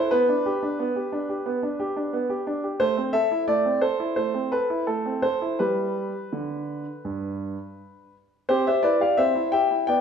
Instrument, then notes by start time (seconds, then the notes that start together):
grand piano
Already playing: E4 C5
0.11 B3 B4
0.29 D4
0.46 G4
0.63 D4
0.80 B3
0.96 G4
1.12 D4
1.29 G4
1.46 B3
1.63 D4
1.80 G4
1.96 D4
2.13 B3
2.30 G4
2.47 D4
2.64 G4
2.80 A3 C5
2.97 C4
3.13 A4 E5
3.32 E4
3.48 A3 D5
3.65 C4
3.81 A4 C5
4.00 E4
4.16 A3 C5
4.34 C4
4.52 A4 B4
4.70 E4
4.87 A3 A4
5.06 C4
5.22 A4 C5
5.42 E4
5.59 G3 G4 B4
6.33 D3
7.05 G2
8.49 C4 G4 C5
8.67 G4 C5 E5
8.83 E4 B4 D5
9.01 G4 D5 F5
9.17 C4 C5 E5
9.35 E4
9.52 G4 E5 G5
9.71 E4
9.87 B3 D5 G5